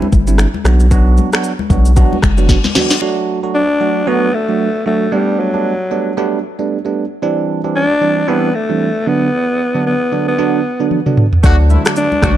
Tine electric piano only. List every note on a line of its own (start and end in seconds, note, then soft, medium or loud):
0.27 0.46 G3 medium
0.27 0.46 C4 medium
0.27 0.46 D4 medium
0.27 0.46 E4 medium
0.64 0.85 F#3 medium
0.64 0.86 B3 medium
0.64 0.86 D4 medium
0.64 0.86 F#4 medium
0.91 1.29 F#3 medium
0.91 1.29 B3 medium
0.91 1.29 D4 medium
0.91 1.29 F#4 loud
1.32 1.51 F#3 medium
1.32 1.51 B3 medium
1.32 1.51 D4 medium
1.32 1.51 F#4 medium
1.70 1.91 F#3 medium
1.70 1.91 B3 medium
1.70 1.91 D4 medium
1.70 1.91 F#4 medium
1.96 2.17 F#3 loud
1.96 2.17 B3 medium
1.96 2.17 D4 medium
1.96 2.17 F#4 loud
2.38 2.56 F#3 medium
2.38 2.57 B3 medium
2.38 2.57 D4 medium
2.38 2.57 F#4 medium
2.75 2.96 F#3 medium
2.75 2.96 B3 medium
2.75 2.96 D4 medium
2.75 2.96 F#4 medium
3.01 3.39 F#3 medium
3.01 3.39 A3 medium
3.01 3.40 D4 medium
3.01 3.40 F#4 loud
3.43 3.62 F#3 medium
3.43 3.62 A3 medium
3.43 3.62 D4 medium
3.43 3.62 F#4 medium
3.80 4.01 F#3 medium
3.80 4.01 A3 medium
3.80 4.01 D4 medium
3.80 4.01 F#4 medium
4.07 4.28 F#3 loud
4.07 4.28 A3 loud
4.07 4.28 D4 medium
4.07 4.28 F#4 loud
4.48 4.67 F#3 medium
4.48 4.67 A3 medium
4.48 4.67 D4 medium
4.48 4.67 F#4 medium
4.85 5.06 F#3 medium
4.85 5.07 A3 medium
4.85 5.07 D4 medium
4.85 5.07 F#4 medium
5.12 5.50 G3 medium
5.12 5.50 A3 medium
5.12 5.50 B3 medium
5.12 5.50 D4 loud
5.53 5.72 G3 medium
5.53 5.72 A3 medium
5.53 5.72 B3 medium
5.53 5.73 D4 medium
5.91 6.12 G3 medium
5.91 6.12 A3 medium
5.91 6.12 B3 medium
5.91 6.12 D4 medium
6.17 6.38 G3 loud
6.17 6.38 A3 medium
6.17 6.38 B3 medium
6.17 6.38 D4 loud
6.59 6.78 G3 medium
6.59 6.78 A3 medium
6.59 6.78 B3 medium
6.59 6.78 D4 medium
6.85 7.04 G3 medium
6.85 7.04 A3 medium
6.85 7.04 B3 medium
6.85 7.04 D4 medium
7.22 7.60 E3 medium
7.22 7.60 G3 medium
7.22 7.61 C4 medium
7.22 7.61 D4 loud
7.64 7.83 E3 medium
7.64 7.83 G3 medium
7.64 7.83 C4 medium
7.64 7.83 D4 medium
8.01 8.22 E3 medium
8.01 8.22 G3 medium
8.01 8.22 C4 medium
8.01 8.23 D4 medium
8.28 8.49 E3 loud
8.28 8.49 G3 medium
8.28 8.49 C4 medium
8.28 8.49 D4 loud
8.69 8.88 E3 medium
8.69 8.88 G3 medium
8.69 8.88 C4 medium
8.69 8.88 D4 medium
9.07 9.28 D3 medium
9.07 9.28 F#3 medium
9.07 9.28 B3 medium
9.07 9.28 D4 medium
9.75 9.93 D3 medium
9.75 9.93 F#3 medium
9.75 9.94 B3 medium
9.75 9.94 D4 medium
10.12 10.33 D3 medium
10.12 10.33 F#3 medium
10.12 10.33 B3 medium
10.12 10.33 D4 medium
10.38 10.59 D3 loud
10.38 10.59 F#3 medium
10.38 10.59 B3 medium
10.38 10.59 D4 loud
10.80 10.99 D3 medium
10.80 10.99 F#3 medium
10.80 10.99 B3 medium
10.80 10.99 D4 medium
11.06 11.25 D3 medium
11.06 11.25 F#3 medium
11.06 11.25 B3 medium
11.06 11.25 D4 medium
11.43 11.81 D3 medium
11.43 11.82 F#3 medium
11.43 11.82 A3 medium
11.43 11.82 D4 loud
11.85 12.04 D3 medium
11.85 12.04 F#3 medium
11.85 12.04 A3 medium
11.85 12.04 D4 medium
12.22 12.37 D3 medium
12.22 12.37 F#3 medium
12.22 12.37 A3 medium
12.22 12.37 D4 medium